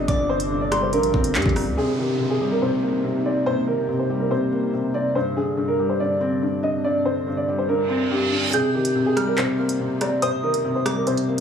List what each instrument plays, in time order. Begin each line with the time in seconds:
Already playing: felt piano G2 D3 G3 C4 D4, ambient pad C3 D3 D4
0.08 808-style bass G1, felt piano G2, grand piano D5, synth bell D6, kick, closed hi-hat
0.29 felt piano D3, grand piano C5
0.40 closed hi-hat
0.51 felt piano G2
0.61 grand piano D5
0.72 felt piano G3, synth bell C6, cross-stick, closed hi-hat
0.82 grand piano C5
0.93 808-style bass A#1, felt piano G2, grand piano A#4, closed hi-hat
1.03 closed hi-hat
1.14 808-style bass G1, felt piano C4, kick
1.24 closed hi-hat
1.35 808-style bass G2, felt piano G2, grand piano G4, clap, closed hi-hat
1.42 808-style bass G1, kick, closed hi-hat
1.49 closed hi-hat
1.56 felt piano D4, cross-stick, open hi-hat
1.67 808-style bass D2
1.77 ambient pad C3 A#3 D#4, felt piano C3, grand piano G#4, downlifter
1.98 felt piano D#3, grand piano G4
2.19 felt piano C3
2.30 grand piano G#4
2.41 felt piano G3
2.51 grand piano A#4
2.62 felt piano C3, grand piano C5
2.83 felt piano A#3
3.04 felt piano C3
3.25 felt piano C4, grand piano D5
3.46 felt piano C3, grand piano C5
3.67 felt piano D#3, grand piano A#4
3.88 felt piano C3
3.99 grand piano C5
4.10 felt piano G3
4.20 grand piano A#4
4.31 felt piano C3, grand piano C5
4.52 felt piano A#3
4.73 felt piano C3
4.94 felt piano C4, grand piano D5
5.15 felt piano G2, ambient pad D3 D4, grand piano C5
5.37 felt piano D3, grand piano G#4
5.57 felt piano G2
5.68 grand piano A#4
5.79 felt piano G3
5.89 grand piano C5
6.00 felt piano G2, grand piano D5
6.21 felt piano C4
6.42 felt piano G2
6.63 felt piano D4, grand piano D#5
6.84 felt piano G2, grand piano D5
7.05 felt piano D3, grand piano C5
7.27 felt piano G2
7.37 grand piano D5
7.48 felt piano G3
7.58 grand piano C5
7.69 felt piano G2, grand piano A#4, reverse cymbal
7.90 felt piano C4
8.11 felt piano G2, grand piano G4
8.32 felt piano D4
8.53 felt piano C3, grand piano G#4, synth bell G6, closed hi-hat
8.74 felt piano D#3, grand piano G4
8.85 closed hi-hat
8.95 felt piano C3
9.06 grand piano G#4
9.16 felt piano G3, synth bell F6, cross-stick, closed hi-hat
9.27 grand piano A#4
9.38 felt piano C3, grand piano C5, clap, closed hi-hat
9.59 felt piano A#3
9.69 closed hi-hat
9.80 felt piano C3
10.01 felt piano C4, grand piano D5, cross-stick, closed hi-hat
10.22 felt piano C3, grand piano C5, synth bell D#6, closed hi-hat
10.43 felt piano D#3, grand piano A#4
10.54 closed hi-hat
10.65 felt piano C3
10.75 grand piano C5
10.86 felt piano G3, synth bell D6, cross-stick, closed hi-hat
10.96 grand piano A#4
11.07 felt piano C3, grand piano C5, closed hi-hat
11.17 closed hi-hat
11.28 felt piano A#3